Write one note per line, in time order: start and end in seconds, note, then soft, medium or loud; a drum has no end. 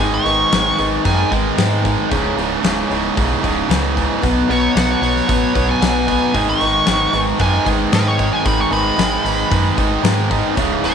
0.00 0.19 G#1 medium
0.00 0.24 G#2 medium
0.00 0.25 G#2 medium
0.00 0.26 D#3 medium
0.00 0.25 D#3 medium
0.00 0.26 G#3 medium
0.00 0.26 G#3 loud
0.00 0.25 B3 medium
0.00 0.24 D#4 medium
0.00 0.23 G#4 medium
0.00 0.10 G#5 medium
0.14 1.03 C#6 medium
0.24 0.45 G#1 medium
0.24 0.51 G#2 medium
0.24 0.52 D#3 medium
0.24 0.53 G#3 medium
0.24 0.51 G#3 soft
0.24 0.51 B3 soft
0.24 0.51 D#4 soft
0.24 0.51 G#4 medium
0.24 open hi-hat medium
0.51 0.72 G#1 medium
0.51 0.78 G#2 medium
0.51 0.79 D#3 medium
0.51 0.78 G#3 medium
0.51 0.79 G#3 loud
0.51 0.78 B3 medium
0.51 0.77 D#4 medium
0.51 0.76 G#4 medium
0.51 snare loud
0.51 open hi-hat medium
0.77 0.98 G#1 medium
0.77 1.04 G#2 medium
0.77 1.05 D#3 medium
0.77 1.03 G#3 soft
0.77 1.05 G#3 medium
0.77 1.04 B3 medium
0.77 1.04 D#4 medium
0.77 1.05 G#4 medium
0.77 open hi-hat medium
1.04 1.25 F#2 medium
1.04 1.30 G#2 medium
1.04 1.31 D#3 medium
1.04 1.31 G#3 soft
1.04 1.31 G#3 medium
1.04 1.31 D#4 medium
1.04 1.30 G#4 medium
1.04 1.31 G#5 medium
1.04 kick medium
1.04 open hi-hat medium
1.31 1.51 G#1 medium
1.31 1.56 G#2 medium
1.31 1.57 D#3 medium
1.31 1.58 G#3 medium
1.31 1.57 G#3 soft
1.31 1.57 B3 soft
1.31 1.58 D#4 soft
1.31 1.58 G#4 soft
1.31 kick medium
1.31 open hi-hat soft
1.57 2.11 G#2 medium
1.57 1.84 G#2 medium
1.57 1.97 G#2 medium
1.57 2.11 D#3 medium
1.57 1.84 D#3 medium
1.57 2.11 G#3 medium
1.57 1.84 G#3 loud
1.57 2.11 B3 medium
1.57 2.12 D#4 medium
1.57 2.11 G#4 medium
1.57 snare loud
1.57 open hi-hat medium
1.85 2.10 G#2 medium
1.85 2.10 D#3 medium
1.85 2.10 G#3 medium
1.85 kick medium
1.85 open hi-hat soft
2.11 2.31 C#1 loud
2.11 2.37 C#2 medium
2.11 2.37 G#2 medium
2.11 2.38 C#3 medium
2.11 2.37 C#3 loud
2.11 2.38 E3 medium
2.11 2.38 C#4 medium
2.11 2.37 E4 medium
2.11 2.36 G#4 medium
2.11 kick medium
2.11 open hi-hat medium
2.37 2.57 C#1 medium
2.37 2.64 C#2 medium
2.37 2.65 G#2 medium
2.37 2.65 C#3 medium
2.37 2.62 C#4 soft
2.37 2.63 E4 soft
2.37 2.63 G#4 medium
2.37 open hi-hat soft
2.63 2.83 C#1 medium
2.63 2.90 C#2 medium
2.63 2.91 G#2 medium
2.63 2.90 C#3 medium
2.63 2.91 C#3 medium
2.63 2.90 E3 medium
2.63 2.90 C#4 medium
2.63 2.90 E4 medium
2.63 2.89 G#4 medium
2.63 snare loud
2.63 open hi-hat medium
2.90 3.10 C#1 medium
2.90 3.16 C#2 medium
2.90 3.17 G#2 medium
2.90 3.17 C#3 medium
2.90 3.15 C#4 soft
2.90 3.16 E4 medium
2.90 3.16 G#4 medium
2.90 open hi-hat soft
3.15 3.37 B1 medium
3.15 3.43 C#2 medium
3.15 3.43 G#2 loud
3.15 3.43 C#3 medium
3.15 3.43 E3 medium
3.15 3.43 C#4 medium
3.15 3.43 E4 medium
3.15 3.41 G#4 medium
3.15 kick loud
3.15 open hi-hat medium
3.42 3.63 C#1 medium
3.42 3.69 C#2 medium
3.42 3.69 G#2 medium
3.42 3.70 C#3 medium
3.42 3.68 C#4 soft
3.42 3.69 E4 soft
3.42 3.69 G#4 medium
3.42 kick medium
3.42 open hi-hat soft
3.69 3.95 C#2 medium
3.69 4.08 C#2 medium
3.69 3.95 G#2 medium
3.69 4.21 C#3 medium
3.69 3.96 C#3 medium
3.69 4.22 E3 medium
3.69 4.22 C#4 medium
3.69 4.22 E4 medium
3.69 4.23 G#4 medium
3.69 snare loud
3.69 open hi-hat medium
3.96 4.21 C#2 medium
3.96 4.21 G#2 medium
3.96 4.21 C#3 medium
3.96 kick medium
3.96 open hi-hat soft
4.22 4.42 B1 loud
4.22 4.49 B2 medium
4.22 4.48 B2 medium
4.22 4.49 F#3 medium
4.22 4.48 F#3 medium
4.22 4.49 B3 medium
4.22 4.50 B3 loud
4.22 4.49 D#4 medium
4.22 4.48 B4 medium
4.22 kick medium
4.22 open hi-hat medium
4.49 4.68 B1 medium
4.49 4.74 B2 medium
4.49 4.75 F#3 medium
4.49 4.76 B3 medium
4.49 4.76 B3 soft
4.49 4.76 D#4 soft
4.49 4.76 B4 medium
4.49 4.76 C#5 medium
4.49 open hi-hat medium
4.75 4.95 B1 medium
4.75 4.99 B2 medium
4.75 5.02 B2 medium
4.75 5.00 F#3 medium
4.75 5.03 F#3 medium
4.75 5.01 B3 loud
4.75 5.03 B3 medium
4.75 5.02 D#4 medium
4.75 5.01 B4 medium
4.75 4.89 F#5 medium
4.75 snare loud
4.75 open hi-hat medium
4.91 5.67 C#5 medium
5.01 5.21 B1 medium
5.01 5.26 B2 medium
5.01 5.27 F#3 medium
5.01 5.28 B3 medium
5.01 5.27 B3 soft
5.01 5.28 D#4 soft
5.01 5.29 B4 soft
5.01 open hi-hat medium
5.17 snare soft
5.28 5.48 A1 medium
5.28 5.52 B2 medium
5.28 5.55 F#3 medium
5.28 5.53 F#3 medium
5.28 5.55 B3 medium
5.28 5.54 B3 medium
5.28 5.55 D#4 soft
5.28 5.53 B4 medium
5.28 kick loud
5.28 open hi-hat medium
5.54 5.75 B1 medium
5.54 5.80 B2 medium
5.54 5.80 F#3 medium
5.54 5.81 B3 medium
5.54 5.81 B3 soft
5.54 5.81 D#4 soft
5.54 5.81 B4 medium
5.54 kick medium
5.54 open hi-hat soft
5.71 6.47 G#5 medium
5.81 6.20 B1 medium
5.81 6.34 B2 medium
5.81 6.06 B2 medium
5.81 6.34 F#3 medium
5.81 6.07 F#3 medium
5.81 6.08 B3 medium
5.81 6.35 B3 medium
5.81 6.35 D#4 medium
5.81 6.36 B4 medium
5.81 snare medium
5.81 open hi-hat medium
6.07 6.33 B2 medium
6.07 6.33 F#3 medium
6.07 6.34 B3 medium
6.07 kick medium
6.07 open hi-hat soft
6.33 6.54 G#1 loud
6.33 6.59 G#2 medium
6.33 6.61 G#2 medium
6.33 6.59 D#3 medium
6.33 6.61 D#3 medium
6.33 6.60 G#3 medium
6.33 6.61 G#3 medium
6.33 6.61 B3 medium
6.33 6.60 D#4 medium
6.33 6.59 G#4 medium
6.33 kick medium
6.33 open hi-hat medium
6.49 7.38 C#6 medium
6.60 6.81 G#1 medium
6.60 6.85 G#2 medium
6.60 6.86 D#3 medium
6.60 6.87 G#3 medium
6.60 6.86 G#3 soft
6.60 6.86 B3 soft
6.60 6.86 D#4 soft
6.60 6.87 G#4 medium
6.60 open hi-hat medium
6.86 7.07 G#1 medium
6.86 7.13 G#2 medium
6.86 7.12 G#2 medium
6.86 7.13 D#3 medium
6.86 7.12 D#3 medium
6.86 7.13 G#3 loud
6.86 7.14 G#3 medium
6.86 7.13 B3 medium
6.86 7.12 D#4 medium
6.86 7.12 G#4 medium
6.86 snare loud
6.86 open hi-hat medium
7.13 7.33 G#1 medium
7.13 7.37 G#2 medium
7.13 7.38 D#3 medium
7.13 7.39 G#3 medium
7.13 7.38 G#3 soft
7.13 7.38 B3 soft
7.13 7.39 D#4 soft
7.13 7.39 G#4 medium
7.13 open hi-hat medium
7.39 7.59 F#2 medium
7.39 7.64 G#2 medium
7.39 7.64 D#3 medium
7.39 7.66 G#3 soft
7.39 7.66 G#3 medium
7.39 7.65 B3 medium
7.39 7.64 D#4 medium
7.39 7.64 G#4 medium
7.39 7.66 G#5 medium
7.39 kick loud
7.39 open hi-hat medium
7.65 7.86 G#1 medium
7.65 7.91 G#2 medium
7.65 7.91 D#3 medium
7.65 7.93 G#3 medium
7.65 7.91 G#3 soft
7.65 7.92 B3 soft
7.65 7.92 D#4 soft
7.65 7.92 G#4 soft
7.65 kick medium
7.65 open hi-hat soft
7.92 8.17 G#2 medium
7.92 8.45 G#2 medium
7.92 8.31 G#2 medium
7.92 8.45 D#3 medium
7.92 8.18 D#3 medium
7.92 8.45 G#3 medium
7.92 8.19 G#3 loud
7.92 8.45 B3 medium
7.92 8.46 D#4 medium
7.92 8.47 G#4 medium
7.92 8.07 B4 medium
7.92 snare loud
7.92 open hi-hat medium
8.07 8.33 C#5 medium
8.18 8.43 G#2 medium
8.18 8.44 D#3 medium
8.18 8.45 G#3 medium
8.18 kick medium
8.18 open hi-hat soft
8.33 8.46 G#5 medium
8.44 8.65 G#1 loud
8.44 8.70 G#2 loud
8.44 8.72 G#2 medium
8.44 8.70 D#3 medium
8.44 8.72 D#3 medium
8.44 8.71 G#3 loud
8.44 8.72 G#3 medium
8.44 8.71 B3 medium
8.44 8.70 D#4 medium
8.44 8.70 G#4 medium
8.44 8.60 B5 medium
8.44 kick loud
8.44 open hi-hat medium
8.60 8.72 C#6 medium
8.71 8.91 G#1 medium
8.71 8.97 G#2 medium
8.71 8.97 D#3 medium
8.71 8.98 G#3 medium
8.71 8.97 G#3 soft
8.71 8.97 B3 soft
8.71 8.97 D#4 medium
8.71 8.97 G#4 medium
8.71 9.75 B5 medium
8.71 open hi-hat medium
8.97 9.18 G#1 medium
8.97 9.24 G#2 medium
8.97 9.23 G#2 medium
8.97 9.24 D#3 medium
8.97 9.23 D#3 medium
8.97 9.25 G#3 medium
8.97 9.25 G#3 loud
8.97 9.25 B3 medium
8.97 9.24 D#4 medium
8.97 9.24 G#4 medium
8.97 snare loud
8.97 open hi-hat medium
9.24 9.44 G#1 medium
9.24 9.50 G#2 medium
9.24 9.50 D#3 medium
9.24 9.51 G#3 medium
9.24 9.49 G#3 soft
9.24 9.49 B3 soft
9.24 9.50 D#4 soft
9.24 9.51 G#4 soft
9.24 open hi-hat medium
9.50 9.71 F#2 medium
9.50 9.76 G#2 medium
9.50 9.77 D#3 medium
9.50 9.77 G#3 medium
9.50 9.77 B3 medium
9.50 9.76 D#4 medium
9.50 9.75 G#4 medium
9.50 kick loud
9.50 open hi-hat medium
9.77 9.97 G#1 medium
9.77 10.03 G#2 medium
9.77 10.03 D#3 medium
9.77 10.04 G#3 medium
9.77 10.02 G#3 soft
9.77 10.03 B3 soft
9.77 10.03 D#4 medium
9.77 10.03 G#4 medium
9.77 kick medium
9.77 open hi-hat medium
10.03 10.56 G#2 medium
10.03 10.29 G#2 medium
10.03 10.42 G#2 medium
10.03 10.55 D#3 medium
10.03 10.30 D#3 medium
10.03 10.55 G#3 medium
10.03 10.30 G#3 loud
10.03 10.56 B3 medium
10.03 10.56 D#4 medium
10.03 10.56 G#4 medium
10.03 snare loud
10.03 open hi-hat medium
10.30 10.55 G#2 medium
10.30 10.56 D#3 medium
10.30 10.56 G#3 medium
10.30 kick medium
10.30 open hi-hat medium
10.56 10.77 C#1 loud
10.56 10.82 C#2 medium
10.56 10.82 G#2 medium
10.56 10.83 C#3 medium
10.56 10.83 E3 medium
10.56 10.83 C#4 medium
10.56 10.82 E4 loud
10.56 10.81 G#4 loud
10.56 kick medium
10.56 open hi-hat medium
10.83 10.95 C#1 medium
10.83 10.95 C#2 medium
10.83 10.95 G#2 medium
10.83 10.95 C#3 medium
10.83 10.95 C#4 soft
10.83 10.95 E4 soft
10.83 10.95 G#4 medium
10.83 10.95 C#5 medium
10.83 open hi-hat medium